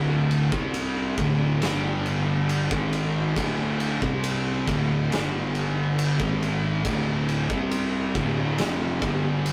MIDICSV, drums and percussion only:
0, 0, Header, 1, 2, 480
1, 0, Start_track
1, 0, Key_signature, -1, "minor"
1, 0, Tempo, 872093
1, 1857, Time_signature, 4, 2, 24, 8
1, 5243, End_track
2, 0, Start_track
2, 0, Title_t, "Drums"
2, 169, Note_on_c, 9, 51, 62
2, 224, Note_off_c, 9, 51, 0
2, 287, Note_on_c, 9, 36, 112
2, 342, Note_off_c, 9, 36, 0
2, 407, Note_on_c, 9, 51, 88
2, 462, Note_off_c, 9, 51, 0
2, 647, Note_on_c, 9, 51, 69
2, 648, Note_on_c, 9, 36, 101
2, 702, Note_off_c, 9, 51, 0
2, 704, Note_off_c, 9, 36, 0
2, 890, Note_on_c, 9, 51, 92
2, 899, Note_on_c, 9, 38, 118
2, 945, Note_off_c, 9, 51, 0
2, 954, Note_off_c, 9, 38, 0
2, 1132, Note_on_c, 9, 51, 65
2, 1187, Note_off_c, 9, 51, 0
2, 1372, Note_on_c, 9, 51, 87
2, 1427, Note_off_c, 9, 51, 0
2, 1492, Note_on_c, 9, 36, 112
2, 1547, Note_off_c, 9, 36, 0
2, 1611, Note_on_c, 9, 51, 72
2, 1666, Note_off_c, 9, 51, 0
2, 1852, Note_on_c, 9, 36, 108
2, 1857, Note_on_c, 9, 51, 98
2, 1907, Note_off_c, 9, 36, 0
2, 1912, Note_off_c, 9, 51, 0
2, 2092, Note_on_c, 9, 51, 70
2, 2147, Note_off_c, 9, 51, 0
2, 2213, Note_on_c, 9, 36, 107
2, 2268, Note_off_c, 9, 36, 0
2, 2332, Note_on_c, 9, 51, 98
2, 2387, Note_off_c, 9, 51, 0
2, 2573, Note_on_c, 9, 36, 105
2, 2579, Note_on_c, 9, 51, 75
2, 2628, Note_off_c, 9, 36, 0
2, 2634, Note_off_c, 9, 51, 0
2, 2819, Note_on_c, 9, 51, 94
2, 2827, Note_on_c, 9, 38, 115
2, 2874, Note_off_c, 9, 51, 0
2, 2882, Note_off_c, 9, 38, 0
2, 3054, Note_on_c, 9, 51, 68
2, 3109, Note_off_c, 9, 51, 0
2, 3295, Note_on_c, 9, 51, 97
2, 3350, Note_off_c, 9, 51, 0
2, 3411, Note_on_c, 9, 36, 108
2, 3466, Note_off_c, 9, 36, 0
2, 3537, Note_on_c, 9, 51, 70
2, 3592, Note_off_c, 9, 51, 0
2, 3770, Note_on_c, 9, 36, 106
2, 3772, Note_on_c, 9, 51, 93
2, 3825, Note_off_c, 9, 36, 0
2, 3827, Note_off_c, 9, 51, 0
2, 4010, Note_on_c, 9, 51, 61
2, 4065, Note_off_c, 9, 51, 0
2, 4128, Note_on_c, 9, 36, 106
2, 4183, Note_off_c, 9, 36, 0
2, 4246, Note_on_c, 9, 51, 86
2, 4301, Note_off_c, 9, 51, 0
2, 4486, Note_on_c, 9, 36, 105
2, 4486, Note_on_c, 9, 51, 70
2, 4542, Note_off_c, 9, 36, 0
2, 4542, Note_off_c, 9, 51, 0
2, 4724, Note_on_c, 9, 51, 90
2, 4732, Note_on_c, 9, 38, 115
2, 4779, Note_off_c, 9, 51, 0
2, 4787, Note_off_c, 9, 38, 0
2, 4965, Note_on_c, 9, 36, 98
2, 4965, Note_on_c, 9, 51, 65
2, 5020, Note_off_c, 9, 36, 0
2, 5020, Note_off_c, 9, 51, 0
2, 5205, Note_on_c, 9, 51, 91
2, 5243, Note_off_c, 9, 51, 0
2, 5243, End_track
0, 0, End_of_file